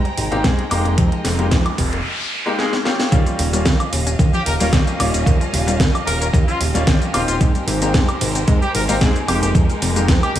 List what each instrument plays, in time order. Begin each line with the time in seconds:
Already playing: violin section G#3 C5 G5 A#5
0.05 synth arpeggio sound G3, closed hi-hat
0.18 analog synth bass G#1, synth arpeggio sound C3, open hi-hat
0.31 analog synth bass G#1, synth arpeggio sound G#3, grand piano A#3 C4 D#4 G4, closed hi-hat
0.44 analog synth bass G#2, synth arpeggio sound C3, grand piano A#3 C4 D#4 G#4, kick, snare, closed hi-hat
0.58 synth arpeggio sound G3, closed hi-hat
0.70 analog synth bass F1, synth arpeggio sound C3, grand piano G#3 A#3 D#4 G4, violin section D#5, open hi-hat, high woodblock
0.85 analog synth bass F1, synth arpeggio sound A#3, closed hi-hat
0.98 analog synth bass F2, synth arpeggio sound C3, kick, closed hi-hat, noise sweep
1.12 synth arpeggio sound F3, closed hi-hat
1.25 analog synth bass F1, synth arpeggio sound C3, snare, open hi-hat
1.39 synth arpeggio sound G3, grand piano G#3 A#3 D#4 G4, closed hi-hat
1.51 analog synth bass F2, synth arpeggio sound C3, kick, snare, closed hi-hat
1.66 synth arpeggio sound F3, closed hi-hat, high woodblock
1.78 analog synth bass F1, synth arpeggio sound C3, kick, open hi-hat
1.93 synth arpeggio sound A#3, closed hi-hat
2.46 grand piano G#3 A#3 D#4 G4
2.58 grand piano G#3 A#3 D#4 G#4, snare
2.73 snare
2.85 grand piano A#3 C#4 F4 G4, snare
3.00 snare
3.12 analog synth bass D#2, synth arpeggio sound C#3, grand piano G3 A#3 C#4 F4, violin section C#4 G4 D#5 F5, kick, closed hi-hat, shaker
3.26 synth arpeggio sound F3, closed hi-hat, shaker
3.39 analog synth bass D#1, synth arpeggio sound C#3, open hi-hat
3.53 grand piano G3 A#3 C#4 F4, synth arpeggio sound G3, closed hi-hat, shaker
3.65 analog synth bass D#2, synth arpeggio sound C#3, kick, snare, closed hi-hat, shaker
3.80 synth arpeggio sound F3, closed hi-hat, high woodblock, shaker
3.93 analog synth bass D#1, synth arpeggio sound C#3, open hi-hat
4.07 synth arpeggio sound C#4, closed hi-hat, shaker
4.19 analog synth bass D#2, synth arpeggio sound C#3, kick, closed hi-hat, shaker
4.33 synth arpeggio sound F3, trumpet section G4, shaker
4.46 analog synth bass D#1, synth arpeggio sound C#3, trumpet section A#4, open hi-hat
4.60 analog synth bass D#1, grand piano G3 A#3 C#4 F4, synth arpeggio sound G3, trumpet section A#4, open hi-hat, shaker
4.72 analog synth bass D#2, synth arpeggio sound C#3, grand piano G3 A#3 C#4 G4, kick, snare, closed hi-hat, shaker
4.87 synth arpeggio sound F3, closed hi-hat, shaker
4.98 analog synth bass D#1, synth arpeggio sound C#3, grand piano G3 A#3 C#4 F4, open hi-hat, high woodblock
5.14 analog synth bass D#1, synth arpeggio sound C#4, closed hi-hat, shaker
5.26 analog synth bass D#2, synth arpeggio sound C#3, kick, closed hi-hat, shaker
5.41 synth arpeggio sound F3, closed hi-hat, shaker
5.53 analog synth bass D#1, synth arpeggio sound C#3, open hi-hat
5.67 grand piano G3 A#3 C#4 F4, synth arpeggio sound G3, closed hi-hat, shaker
5.80 analog synth bass D#2, synth arpeggio sound C#3, kick, snare, closed hi-hat, shaker
5.94 synth arpeggio sound F3, closed hi-hat, high woodblock, shaker
6.07 analog synth bass D#1, synth arpeggio sound C#3, trumpet section A#4, open hi-hat
6.21 synth arpeggio sound C#4, trumpet section A#4, closed hi-hat, shaker
6.33 analog synth bass D#2, synth arpeggio sound C#3, kick, closed hi-hat, shaker
6.47 synth arpeggio sound F3, trumpet section F4, shaker
6.61 analog synth bass D#1, synth arpeggio sound C#3, open hi-hat
6.74 analog synth bass D#1, grand piano G3 A#3 C#4 F4, synth arpeggio sound G3, closed hi-hat, shaker
6.87 analog synth bass D#2, synth arpeggio sound C#3, grand piano G3 A#3 C#4 G4, kick, snare, closed hi-hat, shaker
7.01 synth arpeggio sound F3, closed hi-hat, shaker
7.13 analog synth bass D#1, synth arpeggio sound C#3, grand piano A#3 C4 D#4 G4, trumpet section F4, open hi-hat, high woodblock
7.28 analog synth bass D#1, synth arpeggio sound C#4, trumpet section F4, closed hi-hat, shaker
7.41 analog synth bass G#2, synth arpeggio sound C3, violin section G#3 A#4 C5, kick, closed hi-hat, shaker
7.55 synth arpeggio sound G3, closed hi-hat, shaker
7.67 analog synth bass G#1, synth arpeggio sound C3, open hi-hat
7.81 synth arpeggio sound G#3, grand piano A#3 C4 D#4 G4, closed hi-hat, shaker
7.94 analog synth bass G#2, synth arpeggio sound C3, kick, snare, closed hi-hat, shaker
8.09 synth arpeggio sound G3, closed hi-hat, high woodblock, shaker
8.21 analog synth bass G#1, synth arpeggio sound C3, open hi-hat
8.35 synth arpeggio sound C4, closed hi-hat, shaker
8.48 analog synth bass G#2, synth arpeggio sound C3, kick, closed hi-hat, shaker
8.62 synth arpeggio sound G3, trumpet section G4, shaker
8.75 analog synth bass G#1, synth arpeggio sound C3, trumpet section A#4, open hi-hat
8.88 analog synth bass G#1, synth arpeggio sound G#3, grand piano A#3 C4 D#4 G4, trumpet section A#4, open hi-hat, shaker
9.01 analog synth bass G#2, synth arpeggio sound C3, grand piano A#3 C4 D#4 G#4, kick, snare, closed hi-hat, shaker
9.16 synth arpeggio sound G3, closed hi-hat, shaker
9.27 analog synth bass F1, synth arpeggio sound C3, grand piano G#3 A#3 D#4 G4, violin section D#4 A#4, trumpet section G4, open hi-hat, high woodblock
9.42 analog synth bass F1, synth arpeggio sound A#3, trumpet section G4, closed hi-hat, shaker
9.55 analog synth bass F2, synth arpeggio sound C3, kick, closed hi-hat, shaker
9.69 synth arpeggio sound F3, closed hi-hat, shaker
9.82 analog synth bass F1, synth arpeggio sound C3, open hi-hat
9.95 synth arpeggio sound G3, grand piano G#3 A#3 D#4 G4, closed hi-hat, shaker
10.08 analog synth bass F2, synth arpeggio sound C3, kick, snare, closed hi-hat, shaker
10.22 synth arpeggio sound F3, trumpet section G4, closed hi-hat, high woodblock, shaker
10.35 analog synth bass F1, synth arpeggio sound C3, open hi-hat